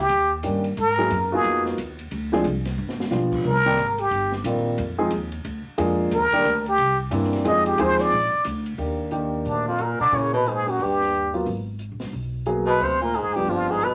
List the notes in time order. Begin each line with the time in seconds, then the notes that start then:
0.00 G4
0.09 D#2, ride
0.43 G2 D#3 G3 A#3 C#4 G4, hi-hat pedal, ride
0.64 ride
0.77 G#2 A#4, ride
0.98 F#3 A#3 B3 D#4 G#4
1.10 F#2, hi-hat pedal, ride
1.32 A#3 B3 D#4 F4 F#4 G#4
1.44 F2, ride
1.66 snare
1.78 D#2, hi-hat pedal, ride
1.99 ride
2.11 D2, ride
2.32 F3 G#3 C4 D4 G#4, snare
2.44 C2, hi-hat pedal, ride
2.65 snare, ride
2.78 G1
2.89 snare
3.00 snare
3.11 B1 F3 G3 B3 D4 F4, snare, hi-hat pedal
3.32 kick, crash
3.44 C2 A#4
3.55 snare
3.65 D#3 G3 A#3 C4 G4, snare
3.77 G#1, hi-hat pedal, ride
3.98 G4, ride
4.11 G1, ride
4.32 snare
4.44 A#1 D#3 G3 A#3 C4 F4, hi-hat pedal, ride
4.78 F2, ride
4.98 F3 G#3 C4 D#4 G#4
5.10 D#2, hi-hat pedal, ride
5.32 ride
5.45 D2, ride
5.66 muted upright bass stroke
5.78 F2 F3 G#3 A#3 D4 G#4, hi-hat pedal, ride
6.11 D#2 A#4, ride
6.32 D#3 G3 A#3 D4 G4, muted upright bass stroke, ride
6.44 D2, hi-hat pedal, ride
6.66 G4, ride
6.78 C2, ride
7.11 G2 E3 G3 A#3 C4 D4, hi-hat pedal, ride
7.23 snare
7.33 snare, ride
7.45 F2 F3 G#3 C4 D#4 G#4 D#5, ride
7.66 G4, ride
7.78 D#2 F3 G#3 C4 D#4 G#4 C5, hi-hat pedal, ride
7.99 D5, snare, ride
8.11 A#1
8.33 muted upright bass stroke
8.44 D2, hi-hat pedal, ride
8.66 ride
8.78 D#2 D#3 A#3 D4 G4, open hi-hat
9.11 D#3 A#3 D4 G4, closed hi-hat
9.45 D2 A#2 D4, open hi-hat
9.68 F2 F4
9.78 A#2 A#4, closed hi-hat
10.00 B2 D3 D5, open hi-hat
10.12 A#2 C#3 E3 A#3 C#4 G#4 C#5, open hi-hat
10.33 B2 B4
10.46 G#2 G#4, closed hi-hat
10.67 F#2 F#4, open hi-hat
10.79 D#2 G2 G4, open hi-hat
11.01 snare
11.13 closed hi-hat
11.34 F#3 A#3 B3 F4, open hi-hat
11.46 G#1, open hi-hat
11.79 closed hi-hat
11.92 A#1
12.00 G1, snare, open hi-hat
12.12 B1, open hi-hat
12.46 F#3 A#3 B3 G#4, closed hi-hat
12.66 B2 B4, open hi-hat
12.80 D2 C3, open hi-hat
12.84 C5
13.01 A#2 A#4
13.14 G#2 G#4, closed hi-hat
13.26 F2
13.35 D2 G2 F3 B3 D4 G4, open hi-hat
13.47 G1 F2 F4, open hi-hat
13.70 G#2 G#4
13.81 B2 B4, closed hi-hat